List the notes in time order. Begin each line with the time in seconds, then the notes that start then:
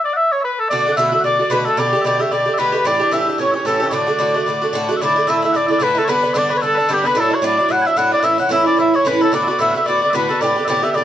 0.04 D5
0.13 E5 F#5
0.32 C#5
0.41 B4 E5
0.59 A4
0.68 B2 D3 D5 E5
0.73 A3 F#4
0.86 D3 A3 F#4
0.92 F#5
0.97 B2 D3 A3 F#4 E5
1.09 F#4 E5 F#5
1.14 D3 A3 E5
1.20 B2 D5 F#5
1.25 D3 A3 F#4 D5
1.39 D3 A3 F#4 D5
1.50 B2 D3 A3 F#4 B4
1.65 D3 A3 F#4 A4
1.77 B2 D3 A3 G4 D5
1.93 D3 A3 G4
2.02 B2 D5 E5
2.06 D3 A3 G4 D5
2.19 D3 A3 G4 E5
2.31 B2 D3 A3 G4 D5
2.46 D3 A3 G4
2.54 B2 E5
2.58 D3 A3 G4 B4
2.72 D3 A3 G4
2.84 A2 E3 D4 G4 D5
2.99 E3 D4 G4
3.11 A2 E3 D4 G4 E5
3.27 E3 D4 G4
3.38 A2 E3 C#4 G4 C#5
3.51 C#4 G4 C#5 E5
3.56 E3 C#5
3.65 A2 E3 C#4 G4 A4
3.80 E3 C#4 G4
3.87 C#5 E5
3.91 A2 D3 A3 F#4 D5
4.07 D3 A3 F#4
4.19 A2 D3 A3 F#4
4.34 D3 A3 F#4
4.46 A2 D3 A3 F#4
4.62 D3 A3 F#4
4.73 A2 D3 A3 F#4
4.89 D3 A3 F#4
4.97 E5
5.01 A2 D3 A3 E4 D5
5.16 D3 A3 E4
5.27 A2 D3 A3 E4 E5
5.42 D3 A3 E4 E5
5.52 A2 D3 A3 D5 F#5
5.57 E4
5.67 A3 E4 D5 E5
5.72 D3 D5
5.79 A2 D3 A3 E4 B4 E5
5.83 B4
5.95 D3 A3 E4 A4
6.05 G2 D3 C#5
6.09 B3 D4 B4
6.22 D3 B3 D4
6.34 G2 D3 B3 D4 D5 E5
6.38 D5
6.49 D3 B3 D4 B4
6.54 B4 C#5
6.61 G2 D3 B3 D4 A4
6.65 A4
6.75 B3 D4 A4 B4
6.80 D3
6.88 G2 D3 B3 D4 G4
6.93 G4
7.03 D3 B3 D4 B4
7.15 A2 F#3 D4 E4 A4
7.20 A4
7.30 F#3 D4 E4 C#5
7.35 C#5
7.42 A2 F#3 D4 E4 D5
7.57 F#3 D4 E4
7.68 A2 F#3 D4 E4 F#5
7.82 E4 G#5
7.86 F#3 D4 E5
7.96 A2 F#3 D4 E4 F#5
8.11 F#3 D4 E4 D5
8.20 A2 E3 C#4 E5 F#5
8.25 E4
8.38 E3 C#4 E4 F#5
8.49 A2 E3 C#4 E4 E5
8.64 E3 C#4 E4 D5
8.77 A2 E3 C#4 E4 E5
8.94 E3 C#4 E4 C#5
9.05 A2 E3 C#4 E4 B4
9.21 E3 C#4 E4 A4
9.32 A2 D3 B3 F#4 D5
9.44 F#4 E5
9.48 D3 B3 D5
9.59 A2 D3 B3 F#4 E5
9.71 F#4 F#5
9.75 D3 B3 E5
9.86 A2 D3 B3 F#4 D5
10.02 D3 B3 F#4 D5
10.10 A2 B4 E5
10.15 D3 B3 F#4 B4
10.29 D3 B3 F#4 A4
10.41 A2 D3 B3 G4 D5
10.56 D3 B3 G4
10.65 A2 D3 D5 E5
10.70 B3 G4
10.82 D3 B3 G4 E5
10.91 A2 D5 E5
10.95 D3 B3 G4 D5